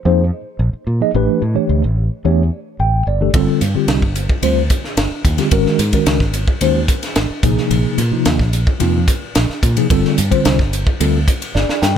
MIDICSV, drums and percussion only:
0, 0, Header, 1, 2, 480
1, 0, Start_track
1, 0, Tempo, 547445
1, 1007, Time_signature, 4, 2, 24, 8
1, 10502, End_track
2, 0, Start_track
2, 0, Title_t, "Drums"
2, 2926, Note_on_c, 9, 51, 68
2, 2928, Note_on_c, 9, 36, 89
2, 3014, Note_off_c, 9, 51, 0
2, 3016, Note_off_c, 9, 36, 0
2, 3166, Note_on_c, 9, 44, 73
2, 3166, Note_on_c, 9, 51, 52
2, 3254, Note_off_c, 9, 44, 0
2, 3254, Note_off_c, 9, 51, 0
2, 3402, Note_on_c, 9, 51, 71
2, 3406, Note_on_c, 9, 38, 93
2, 3490, Note_off_c, 9, 51, 0
2, 3494, Note_off_c, 9, 38, 0
2, 3528, Note_on_c, 9, 36, 64
2, 3615, Note_off_c, 9, 36, 0
2, 3643, Note_on_c, 9, 44, 74
2, 3643, Note_on_c, 9, 51, 51
2, 3730, Note_off_c, 9, 44, 0
2, 3730, Note_off_c, 9, 51, 0
2, 3765, Note_on_c, 9, 36, 74
2, 3853, Note_off_c, 9, 36, 0
2, 3881, Note_on_c, 9, 51, 74
2, 3968, Note_off_c, 9, 51, 0
2, 4119, Note_on_c, 9, 44, 71
2, 4119, Note_on_c, 9, 51, 53
2, 4122, Note_on_c, 9, 36, 75
2, 4207, Note_off_c, 9, 44, 0
2, 4207, Note_off_c, 9, 51, 0
2, 4210, Note_off_c, 9, 36, 0
2, 4248, Note_on_c, 9, 38, 26
2, 4335, Note_off_c, 9, 38, 0
2, 4359, Note_on_c, 9, 51, 69
2, 4363, Note_on_c, 9, 38, 92
2, 4447, Note_off_c, 9, 51, 0
2, 4451, Note_off_c, 9, 38, 0
2, 4600, Note_on_c, 9, 36, 69
2, 4600, Note_on_c, 9, 44, 72
2, 4600, Note_on_c, 9, 51, 55
2, 4687, Note_off_c, 9, 36, 0
2, 4688, Note_off_c, 9, 44, 0
2, 4688, Note_off_c, 9, 51, 0
2, 4718, Note_on_c, 9, 51, 54
2, 4722, Note_on_c, 9, 38, 27
2, 4805, Note_off_c, 9, 51, 0
2, 4810, Note_off_c, 9, 38, 0
2, 4833, Note_on_c, 9, 51, 70
2, 4838, Note_on_c, 9, 36, 91
2, 4921, Note_off_c, 9, 51, 0
2, 4926, Note_off_c, 9, 36, 0
2, 4965, Note_on_c, 9, 38, 28
2, 5052, Note_off_c, 9, 38, 0
2, 5077, Note_on_c, 9, 44, 74
2, 5077, Note_on_c, 9, 51, 59
2, 5165, Note_off_c, 9, 44, 0
2, 5165, Note_off_c, 9, 51, 0
2, 5197, Note_on_c, 9, 51, 55
2, 5199, Note_on_c, 9, 36, 55
2, 5284, Note_off_c, 9, 51, 0
2, 5287, Note_off_c, 9, 36, 0
2, 5316, Note_on_c, 9, 51, 77
2, 5321, Note_on_c, 9, 38, 92
2, 5404, Note_off_c, 9, 51, 0
2, 5408, Note_off_c, 9, 38, 0
2, 5439, Note_on_c, 9, 36, 64
2, 5442, Note_on_c, 9, 38, 26
2, 5526, Note_off_c, 9, 36, 0
2, 5529, Note_off_c, 9, 38, 0
2, 5554, Note_on_c, 9, 44, 71
2, 5554, Note_on_c, 9, 51, 54
2, 5642, Note_off_c, 9, 44, 0
2, 5642, Note_off_c, 9, 51, 0
2, 5678, Note_on_c, 9, 36, 74
2, 5765, Note_off_c, 9, 36, 0
2, 5794, Note_on_c, 9, 51, 71
2, 5882, Note_off_c, 9, 51, 0
2, 6034, Note_on_c, 9, 44, 73
2, 6034, Note_on_c, 9, 51, 51
2, 6036, Note_on_c, 9, 36, 70
2, 6122, Note_off_c, 9, 44, 0
2, 6122, Note_off_c, 9, 51, 0
2, 6123, Note_off_c, 9, 36, 0
2, 6161, Note_on_c, 9, 51, 49
2, 6165, Note_on_c, 9, 38, 27
2, 6248, Note_off_c, 9, 51, 0
2, 6253, Note_off_c, 9, 38, 0
2, 6274, Note_on_c, 9, 51, 67
2, 6278, Note_on_c, 9, 38, 90
2, 6362, Note_off_c, 9, 51, 0
2, 6366, Note_off_c, 9, 38, 0
2, 6516, Note_on_c, 9, 36, 86
2, 6516, Note_on_c, 9, 44, 69
2, 6516, Note_on_c, 9, 51, 54
2, 6603, Note_off_c, 9, 44, 0
2, 6603, Note_off_c, 9, 51, 0
2, 6604, Note_off_c, 9, 36, 0
2, 6643, Note_on_c, 9, 38, 29
2, 6731, Note_off_c, 9, 38, 0
2, 6757, Note_on_c, 9, 51, 64
2, 6845, Note_off_c, 9, 51, 0
2, 6997, Note_on_c, 9, 44, 74
2, 6997, Note_on_c, 9, 51, 52
2, 7085, Note_off_c, 9, 44, 0
2, 7085, Note_off_c, 9, 51, 0
2, 7237, Note_on_c, 9, 51, 72
2, 7241, Note_on_c, 9, 38, 97
2, 7325, Note_off_c, 9, 51, 0
2, 7329, Note_off_c, 9, 38, 0
2, 7360, Note_on_c, 9, 36, 63
2, 7365, Note_on_c, 9, 38, 27
2, 7448, Note_off_c, 9, 36, 0
2, 7452, Note_off_c, 9, 38, 0
2, 7479, Note_on_c, 9, 44, 73
2, 7479, Note_on_c, 9, 51, 51
2, 7567, Note_off_c, 9, 44, 0
2, 7567, Note_off_c, 9, 51, 0
2, 7601, Note_on_c, 9, 36, 75
2, 7689, Note_off_c, 9, 36, 0
2, 7716, Note_on_c, 9, 51, 68
2, 7804, Note_off_c, 9, 51, 0
2, 7958, Note_on_c, 9, 44, 70
2, 7958, Note_on_c, 9, 51, 50
2, 7959, Note_on_c, 9, 36, 70
2, 8046, Note_off_c, 9, 44, 0
2, 8046, Note_off_c, 9, 51, 0
2, 8047, Note_off_c, 9, 36, 0
2, 8199, Note_on_c, 9, 51, 64
2, 8203, Note_on_c, 9, 38, 87
2, 8287, Note_off_c, 9, 51, 0
2, 8291, Note_off_c, 9, 38, 0
2, 8329, Note_on_c, 9, 38, 27
2, 8417, Note_off_c, 9, 38, 0
2, 8442, Note_on_c, 9, 36, 70
2, 8443, Note_on_c, 9, 44, 70
2, 8443, Note_on_c, 9, 51, 53
2, 8529, Note_off_c, 9, 36, 0
2, 8531, Note_off_c, 9, 44, 0
2, 8531, Note_off_c, 9, 51, 0
2, 8563, Note_on_c, 9, 51, 55
2, 8651, Note_off_c, 9, 51, 0
2, 8682, Note_on_c, 9, 36, 95
2, 8684, Note_on_c, 9, 51, 67
2, 8770, Note_off_c, 9, 36, 0
2, 8772, Note_off_c, 9, 51, 0
2, 8811, Note_on_c, 9, 38, 26
2, 8899, Note_off_c, 9, 38, 0
2, 8923, Note_on_c, 9, 44, 73
2, 8923, Note_on_c, 9, 51, 56
2, 9011, Note_off_c, 9, 44, 0
2, 9011, Note_off_c, 9, 51, 0
2, 9045, Note_on_c, 9, 36, 59
2, 9046, Note_on_c, 9, 51, 52
2, 9133, Note_off_c, 9, 36, 0
2, 9133, Note_off_c, 9, 51, 0
2, 9164, Note_on_c, 9, 51, 74
2, 9168, Note_on_c, 9, 38, 98
2, 9251, Note_off_c, 9, 51, 0
2, 9256, Note_off_c, 9, 38, 0
2, 9287, Note_on_c, 9, 36, 68
2, 9293, Note_on_c, 9, 38, 26
2, 9374, Note_off_c, 9, 36, 0
2, 9381, Note_off_c, 9, 38, 0
2, 9408, Note_on_c, 9, 44, 72
2, 9408, Note_on_c, 9, 51, 58
2, 9496, Note_off_c, 9, 44, 0
2, 9496, Note_off_c, 9, 51, 0
2, 9527, Note_on_c, 9, 36, 76
2, 9615, Note_off_c, 9, 36, 0
2, 9650, Note_on_c, 9, 51, 81
2, 9737, Note_off_c, 9, 51, 0
2, 9887, Note_on_c, 9, 36, 70
2, 9889, Note_on_c, 9, 44, 73
2, 9889, Note_on_c, 9, 51, 54
2, 9975, Note_off_c, 9, 36, 0
2, 9977, Note_off_c, 9, 44, 0
2, 9977, Note_off_c, 9, 51, 0
2, 10012, Note_on_c, 9, 51, 53
2, 10100, Note_off_c, 9, 51, 0
2, 10134, Note_on_c, 9, 38, 50
2, 10222, Note_off_c, 9, 38, 0
2, 10253, Note_on_c, 9, 38, 50
2, 10341, Note_off_c, 9, 38, 0
2, 10366, Note_on_c, 9, 44, 73
2, 10371, Note_on_c, 9, 38, 73
2, 10454, Note_off_c, 9, 44, 0
2, 10459, Note_off_c, 9, 38, 0
2, 10502, End_track
0, 0, End_of_file